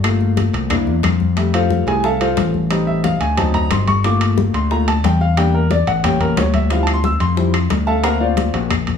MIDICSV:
0, 0, Header, 1, 4, 480
1, 0, Start_track
1, 0, Key_signature, -1, "major"
1, 0, Tempo, 333333
1, 63, Time_signature, 4, 2, 24, 8
1, 12925, End_track
2, 0, Start_track
2, 0, Title_t, "Upright piano"
2, 0, Program_c, 0, 0
2, 51, Note_on_c, 0, 57, 57
2, 55, Note_on_c, 0, 58, 46
2, 65, Note_on_c, 0, 65, 55
2, 967, Note_off_c, 0, 57, 0
2, 969, Note_off_c, 0, 58, 0
2, 975, Note_off_c, 0, 65, 0
2, 1002, Note_on_c, 0, 58, 59
2, 1012, Note_on_c, 0, 62, 54
2, 1021, Note_on_c, 0, 64, 62
2, 1330, Note_off_c, 0, 58, 0
2, 1336, Note_off_c, 0, 62, 0
2, 1340, Note_off_c, 0, 64, 0
2, 1963, Note_on_c, 0, 55, 49
2, 1972, Note_on_c, 0, 57, 43
2, 1981, Note_on_c, 0, 76, 53
2, 2219, Note_on_c, 0, 77, 88
2, 2224, Note_on_c, 0, 69, 70
2, 2225, Note_on_c, 0, 72, 71
2, 2226, Note_on_c, 0, 65, 69
2, 2655, Note_off_c, 0, 55, 0
2, 2659, Note_off_c, 0, 57, 0
2, 2664, Note_off_c, 0, 76, 0
2, 2666, Note_off_c, 0, 77, 0
2, 2668, Note_off_c, 0, 69, 0
2, 2669, Note_off_c, 0, 65, 0
2, 2669, Note_off_c, 0, 72, 0
2, 2688, Note_on_c, 0, 55, 45
2, 2698, Note_on_c, 0, 57, 42
2, 2699, Note_on_c, 0, 80, 88
2, 2700, Note_on_c, 0, 68, 72
2, 2704, Note_on_c, 0, 64, 49
2, 2859, Note_off_c, 0, 80, 0
2, 2881, Note_on_c, 0, 80, 69
2, 2910, Note_off_c, 0, 55, 0
2, 2915, Note_off_c, 0, 57, 0
2, 2916, Note_off_c, 0, 80, 0
2, 2918, Note_off_c, 0, 64, 0
2, 2933, Note_off_c, 0, 68, 0
2, 2944, Note_on_c, 0, 81, 95
2, 2949, Note_on_c, 0, 69, 75
2, 2950, Note_on_c, 0, 77, 72
2, 2951, Note_on_c, 0, 76, 74
2, 3163, Note_off_c, 0, 77, 0
2, 3169, Note_off_c, 0, 69, 0
2, 3175, Note_off_c, 0, 81, 0
2, 3178, Note_off_c, 0, 76, 0
2, 3184, Note_on_c, 0, 77, 93
2, 3190, Note_on_c, 0, 65, 75
2, 3191, Note_on_c, 0, 69, 74
2, 3191, Note_on_c, 0, 72, 75
2, 3628, Note_off_c, 0, 77, 0
2, 3631, Note_off_c, 0, 65, 0
2, 3632, Note_off_c, 0, 69, 0
2, 3632, Note_off_c, 0, 72, 0
2, 3894, Note_on_c, 0, 55, 55
2, 3901, Note_on_c, 0, 60, 48
2, 3913, Note_on_c, 0, 63, 60
2, 4135, Note_on_c, 0, 76, 89
2, 4369, Note_off_c, 0, 76, 0
2, 4383, Note_on_c, 0, 77, 93
2, 4580, Note_off_c, 0, 55, 0
2, 4584, Note_off_c, 0, 60, 0
2, 4590, Note_off_c, 0, 63, 0
2, 4614, Note_off_c, 0, 77, 0
2, 4615, Note_on_c, 0, 80, 91
2, 4850, Note_off_c, 0, 80, 0
2, 4852, Note_on_c, 0, 54, 59
2, 4865, Note_on_c, 0, 60, 51
2, 4870, Note_on_c, 0, 81, 89
2, 4874, Note_on_c, 0, 63, 62
2, 5097, Note_off_c, 0, 81, 0
2, 5104, Note_on_c, 0, 82, 110
2, 5334, Note_off_c, 0, 82, 0
2, 5345, Note_on_c, 0, 84, 87
2, 5539, Note_off_c, 0, 54, 0
2, 5546, Note_off_c, 0, 60, 0
2, 5550, Note_off_c, 0, 63, 0
2, 5575, Note_off_c, 0, 84, 0
2, 5587, Note_on_c, 0, 85, 108
2, 5816, Note_off_c, 0, 85, 0
2, 5820, Note_on_c, 0, 57, 50
2, 5828, Note_on_c, 0, 58, 49
2, 5838, Note_on_c, 0, 65, 62
2, 5838, Note_on_c, 0, 86, 105
2, 6498, Note_off_c, 0, 86, 0
2, 6503, Note_off_c, 0, 57, 0
2, 6508, Note_off_c, 0, 58, 0
2, 6513, Note_off_c, 0, 65, 0
2, 6547, Note_on_c, 0, 84, 91
2, 6776, Note_off_c, 0, 84, 0
2, 6782, Note_on_c, 0, 57, 50
2, 6786, Note_on_c, 0, 58, 46
2, 6791, Note_on_c, 0, 82, 91
2, 6793, Note_on_c, 0, 65, 52
2, 6996, Note_off_c, 0, 57, 0
2, 6999, Note_off_c, 0, 58, 0
2, 7003, Note_off_c, 0, 65, 0
2, 7017, Note_off_c, 0, 82, 0
2, 7027, Note_on_c, 0, 81, 103
2, 7255, Note_off_c, 0, 81, 0
2, 7274, Note_on_c, 0, 79, 85
2, 7500, Note_off_c, 0, 79, 0
2, 7504, Note_on_c, 0, 77, 97
2, 7731, Note_on_c, 0, 55, 53
2, 7734, Note_off_c, 0, 77, 0
2, 7738, Note_on_c, 0, 58, 47
2, 7743, Note_on_c, 0, 79, 96
2, 7748, Note_on_c, 0, 62, 54
2, 7974, Note_off_c, 0, 79, 0
2, 7985, Note_on_c, 0, 70, 77
2, 8054, Note_off_c, 0, 55, 0
2, 8058, Note_off_c, 0, 58, 0
2, 8063, Note_off_c, 0, 62, 0
2, 8215, Note_off_c, 0, 70, 0
2, 8225, Note_on_c, 0, 74, 86
2, 8455, Note_off_c, 0, 74, 0
2, 8461, Note_on_c, 0, 78, 89
2, 8682, Note_on_c, 0, 55, 52
2, 8690, Note_on_c, 0, 58, 53
2, 8693, Note_off_c, 0, 78, 0
2, 8701, Note_on_c, 0, 79, 99
2, 8703, Note_on_c, 0, 61, 55
2, 8933, Note_off_c, 0, 79, 0
2, 8937, Note_on_c, 0, 70, 81
2, 9171, Note_off_c, 0, 70, 0
2, 9183, Note_on_c, 0, 73, 78
2, 9414, Note_off_c, 0, 73, 0
2, 9425, Note_on_c, 0, 76, 90
2, 9602, Note_off_c, 0, 55, 0
2, 9607, Note_off_c, 0, 58, 0
2, 9614, Note_off_c, 0, 61, 0
2, 9655, Note_off_c, 0, 76, 0
2, 9664, Note_on_c, 0, 53, 51
2, 9671, Note_on_c, 0, 55, 48
2, 9679, Note_on_c, 0, 60, 49
2, 9680, Note_on_c, 0, 64, 58
2, 9681, Note_on_c, 0, 77, 78
2, 9826, Note_off_c, 0, 77, 0
2, 9836, Note_on_c, 0, 81, 87
2, 9981, Note_off_c, 0, 53, 0
2, 9983, Note_off_c, 0, 81, 0
2, 9985, Note_off_c, 0, 55, 0
2, 9989, Note_off_c, 0, 60, 0
2, 9989, Note_on_c, 0, 84, 96
2, 9990, Note_off_c, 0, 64, 0
2, 10140, Note_off_c, 0, 84, 0
2, 10145, Note_on_c, 0, 88, 112
2, 10375, Note_off_c, 0, 88, 0
2, 10376, Note_on_c, 0, 84, 98
2, 10608, Note_on_c, 0, 53, 48
2, 10613, Note_on_c, 0, 55, 47
2, 10622, Note_on_c, 0, 60, 41
2, 10622, Note_on_c, 0, 64, 56
2, 10830, Note_off_c, 0, 53, 0
2, 10832, Note_off_c, 0, 55, 0
2, 10837, Note_off_c, 0, 60, 0
2, 10837, Note_off_c, 0, 64, 0
2, 11048, Note_off_c, 0, 84, 0
2, 11332, Note_on_c, 0, 81, 100
2, 11338, Note_on_c, 0, 76, 81
2, 11338, Note_on_c, 0, 77, 81
2, 11339, Note_on_c, 0, 69, 78
2, 11563, Note_on_c, 0, 58, 55
2, 11565, Note_off_c, 0, 77, 0
2, 11569, Note_off_c, 0, 81, 0
2, 11572, Note_off_c, 0, 69, 0
2, 11572, Note_off_c, 0, 76, 0
2, 11572, Note_on_c, 0, 60, 50
2, 11575, Note_on_c, 0, 82, 97
2, 11581, Note_on_c, 0, 70, 76
2, 11581, Note_on_c, 0, 78, 73
2, 11582, Note_on_c, 0, 66, 57
2, 11587, Note_on_c, 0, 77, 77
2, 11790, Note_off_c, 0, 77, 0
2, 11811, Note_off_c, 0, 82, 0
2, 11811, Note_on_c, 0, 77, 76
2, 11813, Note_off_c, 0, 78, 0
2, 11814, Note_off_c, 0, 70, 0
2, 11816, Note_on_c, 0, 65, 63
2, 11820, Note_on_c, 0, 72, 61
2, 11820, Note_on_c, 0, 74, 67
2, 12262, Note_off_c, 0, 77, 0
2, 12265, Note_off_c, 0, 65, 0
2, 12267, Note_off_c, 0, 72, 0
2, 12267, Note_off_c, 0, 74, 0
2, 12270, Note_off_c, 0, 58, 0
2, 12275, Note_off_c, 0, 60, 0
2, 12279, Note_off_c, 0, 66, 0
2, 12291, Note_on_c, 0, 58, 46
2, 12297, Note_on_c, 0, 60, 46
2, 12301, Note_on_c, 0, 66, 50
2, 12512, Note_off_c, 0, 58, 0
2, 12515, Note_off_c, 0, 60, 0
2, 12517, Note_off_c, 0, 66, 0
2, 12925, End_track
3, 0, Start_track
3, 0, Title_t, "Picked electric bass"
3, 0, Program_c, 1, 34
3, 0, Note_on_c, 1, 31, 92
3, 697, Note_off_c, 1, 31, 0
3, 769, Note_on_c, 1, 36, 97
3, 1221, Note_off_c, 1, 36, 0
3, 1251, Note_on_c, 1, 40, 73
3, 1479, Note_off_c, 1, 40, 0
3, 1491, Note_on_c, 1, 41, 88
3, 2613, Note_off_c, 1, 41, 0
3, 2688, Note_on_c, 1, 36, 85
3, 3363, Note_off_c, 1, 36, 0
3, 3410, Note_on_c, 1, 33, 93
3, 4532, Note_off_c, 1, 33, 0
3, 4617, Note_on_c, 1, 38, 86
3, 5287, Note_off_c, 1, 38, 0
3, 5337, Note_on_c, 1, 31, 90
3, 6456, Note_off_c, 1, 31, 0
3, 6534, Note_on_c, 1, 38, 87
3, 7205, Note_off_c, 1, 38, 0
3, 7254, Note_on_c, 1, 40, 83
3, 8375, Note_off_c, 1, 40, 0
3, 8455, Note_on_c, 1, 33, 89
3, 9126, Note_off_c, 1, 33, 0
3, 9172, Note_on_c, 1, 38, 89
3, 10294, Note_off_c, 1, 38, 0
3, 10369, Note_on_c, 1, 41, 88
3, 11044, Note_off_c, 1, 41, 0
3, 11089, Note_on_c, 1, 38, 93
3, 12214, Note_off_c, 1, 38, 0
3, 12294, Note_on_c, 1, 34, 92
3, 12925, Note_off_c, 1, 34, 0
3, 12925, End_track
4, 0, Start_track
4, 0, Title_t, "Drums"
4, 55, Note_on_c, 9, 63, 36
4, 58, Note_on_c, 9, 60, 72
4, 61, Note_on_c, 9, 65, 101
4, 62, Note_on_c, 9, 75, 70
4, 199, Note_off_c, 9, 63, 0
4, 202, Note_off_c, 9, 60, 0
4, 205, Note_off_c, 9, 65, 0
4, 206, Note_off_c, 9, 75, 0
4, 297, Note_on_c, 9, 60, 33
4, 300, Note_on_c, 9, 63, 35
4, 441, Note_off_c, 9, 60, 0
4, 444, Note_off_c, 9, 63, 0
4, 534, Note_on_c, 9, 60, 67
4, 537, Note_on_c, 9, 63, 58
4, 540, Note_on_c, 9, 65, 71
4, 678, Note_off_c, 9, 60, 0
4, 681, Note_off_c, 9, 63, 0
4, 684, Note_off_c, 9, 65, 0
4, 780, Note_on_c, 9, 63, 36
4, 780, Note_on_c, 9, 65, 75
4, 924, Note_off_c, 9, 63, 0
4, 924, Note_off_c, 9, 65, 0
4, 1010, Note_on_c, 9, 60, 69
4, 1016, Note_on_c, 9, 65, 94
4, 1020, Note_on_c, 9, 63, 36
4, 1020, Note_on_c, 9, 64, 84
4, 1024, Note_on_c, 9, 75, 69
4, 1154, Note_off_c, 9, 60, 0
4, 1160, Note_off_c, 9, 65, 0
4, 1164, Note_off_c, 9, 63, 0
4, 1164, Note_off_c, 9, 64, 0
4, 1168, Note_off_c, 9, 75, 0
4, 1254, Note_on_c, 9, 60, 36
4, 1257, Note_on_c, 9, 63, 35
4, 1398, Note_off_c, 9, 60, 0
4, 1401, Note_off_c, 9, 63, 0
4, 1487, Note_on_c, 9, 60, 70
4, 1487, Note_on_c, 9, 61, 80
4, 1495, Note_on_c, 9, 63, 78
4, 1497, Note_on_c, 9, 65, 98
4, 1503, Note_on_c, 9, 75, 69
4, 1631, Note_off_c, 9, 60, 0
4, 1631, Note_off_c, 9, 61, 0
4, 1639, Note_off_c, 9, 63, 0
4, 1641, Note_off_c, 9, 65, 0
4, 1647, Note_off_c, 9, 75, 0
4, 1730, Note_on_c, 9, 60, 36
4, 1740, Note_on_c, 9, 63, 81
4, 1874, Note_off_c, 9, 60, 0
4, 1884, Note_off_c, 9, 63, 0
4, 1970, Note_on_c, 9, 60, 72
4, 1977, Note_on_c, 9, 63, 35
4, 1979, Note_on_c, 9, 65, 67
4, 2114, Note_off_c, 9, 60, 0
4, 2121, Note_off_c, 9, 63, 0
4, 2123, Note_off_c, 9, 65, 0
4, 2217, Note_on_c, 9, 65, 93
4, 2221, Note_on_c, 9, 63, 34
4, 2361, Note_off_c, 9, 65, 0
4, 2365, Note_off_c, 9, 63, 0
4, 2453, Note_on_c, 9, 63, 86
4, 2454, Note_on_c, 9, 60, 60
4, 2597, Note_off_c, 9, 63, 0
4, 2598, Note_off_c, 9, 60, 0
4, 2694, Note_on_c, 9, 60, 34
4, 2703, Note_on_c, 9, 65, 68
4, 2838, Note_off_c, 9, 60, 0
4, 2847, Note_off_c, 9, 65, 0
4, 2936, Note_on_c, 9, 60, 67
4, 2940, Note_on_c, 9, 63, 33
4, 3080, Note_off_c, 9, 60, 0
4, 3084, Note_off_c, 9, 63, 0
4, 3176, Note_on_c, 9, 60, 35
4, 3181, Note_on_c, 9, 63, 33
4, 3181, Note_on_c, 9, 65, 88
4, 3320, Note_off_c, 9, 60, 0
4, 3325, Note_off_c, 9, 63, 0
4, 3325, Note_off_c, 9, 65, 0
4, 3414, Note_on_c, 9, 60, 70
4, 3414, Note_on_c, 9, 61, 81
4, 3419, Note_on_c, 9, 63, 84
4, 3421, Note_on_c, 9, 65, 73
4, 3558, Note_off_c, 9, 60, 0
4, 3558, Note_off_c, 9, 61, 0
4, 3563, Note_off_c, 9, 63, 0
4, 3565, Note_off_c, 9, 65, 0
4, 3658, Note_on_c, 9, 60, 35
4, 3663, Note_on_c, 9, 63, 68
4, 3802, Note_off_c, 9, 60, 0
4, 3807, Note_off_c, 9, 63, 0
4, 3896, Note_on_c, 9, 60, 73
4, 3896, Note_on_c, 9, 65, 89
4, 3908, Note_on_c, 9, 63, 34
4, 4040, Note_off_c, 9, 60, 0
4, 4040, Note_off_c, 9, 65, 0
4, 4052, Note_off_c, 9, 63, 0
4, 4151, Note_on_c, 9, 63, 34
4, 4295, Note_off_c, 9, 63, 0
4, 4377, Note_on_c, 9, 65, 68
4, 4378, Note_on_c, 9, 60, 67
4, 4391, Note_on_c, 9, 63, 94
4, 4521, Note_off_c, 9, 65, 0
4, 4522, Note_off_c, 9, 60, 0
4, 4535, Note_off_c, 9, 63, 0
4, 4617, Note_on_c, 9, 65, 72
4, 4624, Note_on_c, 9, 60, 36
4, 4630, Note_on_c, 9, 63, 37
4, 4761, Note_off_c, 9, 65, 0
4, 4768, Note_off_c, 9, 60, 0
4, 4774, Note_off_c, 9, 63, 0
4, 4860, Note_on_c, 9, 65, 92
4, 4862, Note_on_c, 9, 60, 66
4, 4871, Note_on_c, 9, 63, 36
4, 4871, Note_on_c, 9, 64, 84
4, 5004, Note_off_c, 9, 65, 0
4, 5006, Note_off_c, 9, 60, 0
4, 5015, Note_off_c, 9, 63, 0
4, 5015, Note_off_c, 9, 64, 0
4, 5098, Note_on_c, 9, 65, 67
4, 5109, Note_on_c, 9, 63, 34
4, 5109, Note_on_c, 9, 64, 69
4, 5242, Note_off_c, 9, 65, 0
4, 5253, Note_off_c, 9, 63, 0
4, 5253, Note_off_c, 9, 64, 0
4, 5337, Note_on_c, 9, 65, 100
4, 5342, Note_on_c, 9, 60, 69
4, 5342, Note_on_c, 9, 61, 81
4, 5349, Note_on_c, 9, 63, 82
4, 5481, Note_off_c, 9, 65, 0
4, 5486, Note_off_c, 9, 60, 0
4, 5486, Note_off_c, 9, 61, 0
4, 5493, Note_off_c, 9, 63, 0
4, 5580, Note_on_c, 9, 65, 69
4, 5583, Note_on_c, 9, 60, 35
4, 5585, Note_on_c, 9, 63, 77
4, 5724, Note_off_c, 9, 65, 0
4, 5727, Note_off_c, 9, 60, 0
4, 5729, Note_off_c, 9, 63, 0
4, 5823, Note_on_c, 9, 60, 71
4, 5825, Note_on_c, 9, 65, 72
4, 5967, Note_off_c, 9, 60, 0
4, 5969, Note_off_c, 9, 65, 0
4, 6062, Note_on_c, 9, 65, 97
4, 6063, Note_on_c, 9, 63, 34
4, 6206, Note_off_c, 9, 65, 0
4, 6207, Note_off_c, 9, 63, 0
4, 6301, Note_on_c, 9, 60, 68
4, 6308, Note_on_c, 9, 63, 95
4, 6445, Note_off_c, 9, 60, 0
4, 6452, Note_off_c, 9, 63, 0
4, 6542, Note_on_c, 9, 60, 35
4, 6542, Note_on_c, 9, 65, 72
4, 6686, Note_off_c, 9, 60, 0
4, 6686, Note_off_c, 9, 65, 0
4, 6781, Note_on_c, 9, 60, 67
4, 6785, Note_on_c, 9, 63, 36
4, 6925, Note_off_c, 9, 60, 0
4, 6929, Note_off_c, 9, 63, 0
4, 7021, Note_on_c, 9, 63, 35
4, 7023, Note_on_c, 9, 60, 35
4, 7025, Note_on_c, 9, 65, 91
4, 7165, Note_off_c, 9, 63, 0
4, 7167, Note_off_c, 9, 60, 0
4, 7169, Note_off_c, 9, 65, 0
4, 7259, Note_on_c, 9, 65, 70
4, 7263, Note_on_c, 9, 63, 87
4, 7265, Note_on_c, 9, 60, 69
4, 7265, Note_on_c, 9, 61, 87
4, 7403, Note_off_c, 9, 65, 0
4, 7407, Note_off_c, 9, 63, 0
4, 7409, Note_off_c, 9, 60, 0
4, 7409, Note_off_c, 9, 61, 0
4, 7500, Note_on_c, 9, 60, 37
4, 7644, Note_off_c, 9, 60, 0
4, 7738, Note_on_c, 9, 65, 96
4, 7740, Note_on_c, 9, 60, 68
4, 7882, Note_off_c, 9, 65, 0
4, 7884, Note_off_c, 9, 60, 0
4, 7977, Note_on_c, 9, 63, 35
4, 8121, Note_off_c, 9, 63, 0
4, 8215, Note_on_c, 9, 63, 89
4, 8217, Note_on_c, 9, 60, 67
4, 8218, Note_on_c, 9, 65, 64
4, 8359, Note_off_c, 9, 63, 0
4, 8361, Note_off_c, 9, 60, 0
4, 8362, Note_off_c, 9, 65, 0
4, 8458, Note_on_c, 9, 65, 74
4, 8460, Note_on_c, 9, 63, 36
4, 8461, Note_on_c, 9, 60, 35
4, 8602, Note_off_c, 9, 65, 0
4, 8604, Note_off_c, 9, 63, 0
4, 8605, Note_off_c, 9, 60, 0
4, 8697, Note_on_c, 9, 65, 99
4, 8698, Note_on_c, 9, 63, 38
4, 8698, Note_on_c, 9, 64, 86
4, 8700, Note_on_c, 9, 60, 71
4, 8841, Note_off_c, 9, 65, 0
4, 8842, Note_off_c, 9, 63, 0
4, 8842, Note_off_c, 9, 64, 0
4, 8844, Note_off_c, 9, 60, 0
4, 8931, Note_on_c, 9, 63, 36
4, 8931, Note_on_c, 9, 64, 69
4, 8937, Note_on_c, 9, 65, 70
4, 9075, Note_off_c, 9, 63, 0
4, 9075, Note_off_c, 9, 64, 0
4, 9081, Note_off_c, 9, 65, 0
4, 9172, Note_on_c, 9, 63, 79
4, 9177, Note_on_c, 9, 60, 72
4, 9177, Note_on_c, 9, 61, 82
4, 9180, Note_on_c, 9, 65, 94
4, 9180, Note_on_c, 9, 66, 75
4, 9316, Note_off_c, 9, 63, 0
4, 9321, Note_off_c, 9, 60, 0
4, 9321, Note_off_c, 9, 61, 0
4, 9324, Note_off_c, 9, 65, 0
4, 9324, Note_off_c, 9, 66, 0
4, 9413, Note_on_c, 9, 65, 72
4, 9414, Note_on_c, 9, 63, 76
4, 9419, Note_on_c, 9, 60, 38
4, 9557, Note_off_c, 9, 65, 0
4, 9558, Note_off_c, 9, 63, 0
4, 9563, Note_off_c, 9, 60, 0
4, 9653, Note_on_c, 9, 65, 70
4, 9656, Note_on_c, 9, 63, 32
4, 9657, Note_on_c, 9, 60, 69
4, 9797, Note_off_c, 9, 65, 0
4, 9800, Note_off_c, 9, 63, 0
4, 9801, Note_off_c, 9, 60, 0
4, 9892, Note_on_c, 9, 65, 102
4, 9899, Note_on_c, 9, 75, 64
4, 9903, Note_on_c, 9, 63, 34
4, 10036, Note_off_c, 9, 65, 0
4, 10043, Note_off_c, 9, 75, 0
4, 10047, Note_off_c, 9, 63, 0
4, 10135, Note_on_c, 9, 60, 62
4, 10135, Note_on_c, 9, 63, 92
4, 10279, Note_off_c, 9, 60, 0
4, 10279, Note_off_c, 9, 63, 0
4, 10373, Note_on_c, 9, 65, 69
4, 10375, Note_on_c, 9, 60, 35
4, 10517, Note_off_c, 9, 65, 0
4, 10519, Note_off_c, 9, 60, 0
4, 10617, Note_on_c, 9, 60, 66
4, 10618, Note_on_c, 9, 63, 36
4, 10761, Note_off_c, 9, 60, 0
4, 10762, Note_off_c, 9, 63, 0
4, 10856, Note_on_c, 9, 60, 35
4, 10856, Note_on_c, 9, 63, 34
4, 10856, Note_on_c, 9, 65, 89
4, 10858, Note_on_c, 9, 75, 65
4, 11000, Note_off_c, 9, 60, 0
4, 11000, Note_off_c, 9, 63, 0
4, 11000, Note_off_c, 9, 65, 0
4, 11002, Note_off_c, 9, 75, 0
4, 11092, Note_on_c, 9, 60, 70
4, 11092, Note_on_c, 9, 61, 82
4, 11097, Note_on_c, 9, 65, 73
4, 11098, Note_on_c, 9, 63, 81
4, 11236, Note_off_c, 9, 60, 0
4, 11236, Note_off_c, 9, 61, 0
4, 11241, Note_off_c, 9, 65, 0
4, 11242, Note_off_c, 9, 63, 0
4, 11334, Note_on_c, 9, 60, 37
4, 11478, Note_off_c, 9, 60, 0
4, 11571, Note_on_c, 9, 65, 90
4, 11577, Note_on_c, 9, 60, 74
4, 11580, Note_on_c, 9, 63, 36
4, 11585, Note_on_c, 9, 75, 69
4, 11715, Note_off_c, 9, 65, 0
4, 11721, Note_off_c, 9, 60, 0
4, 11724, Note_off_c, 9, 63, 0
4, 11729, Note_off_c, 9, 75, 0
4, 11815, Note_on_c, 9, 63, 34
4, 11959, Note_off_c, 9, 63, 0
4, 12052, Note_on_c, 9, 63, 95
4, 12053, Note_on_c, 9, 65, 69
4, 12059, Note_on_c, 9, 60, 65
4, 12196, Note_off_c, 9, 63, 0
4, 12197, Note_off_c, 9, 65, 0
4, 12203, Note_off_c, 9, 60, 0
4, 12296, Note_on_c, 9, 65, 74
4, 12299, Note_on_c, 9, 60, 35
4, 12299, Note_on_c, 9, 63, 35
4, 12440, Note_off_c, 9, 65, 0
4, 12443, Note_off_c, 9, 60, 0
4, 12443, Note_off_c, 9, 63, 0
4, 12535, Note_on_c, 9, 60, 69
4, 12536, Note_on_c, 9, 65, 95
4, 12543, Note_on_c, 9, 63, 35
4, 12543, Note_on_c, 9, 64, 89
4, 12545, Note_on_c, 9, 75, 65
4, 12679, Note_off_c, 9, 60, 0
4, 12680, Note_off_c, 9, 65, 0
4, 12687, Note_off_c, 9, 63, 0
4, 12687, Note_off_c, 9, 64, 0
4, 12689, Note_off_c, 9, 75, 0
4, 12774, Note_on_c, 9, 65, 73
4, 12783, Note_on_c, 9, 63, 37
4, 12783, Note_on_c, 9, 64, 75
4, 12918, Note_off_c, 9, 65, 0
4, 12925, Note_off_c, 9, 63, 0
4, 12925, Note_off_c, 9, 64, 0
4, 12925, End_track
0, 0, End_of_file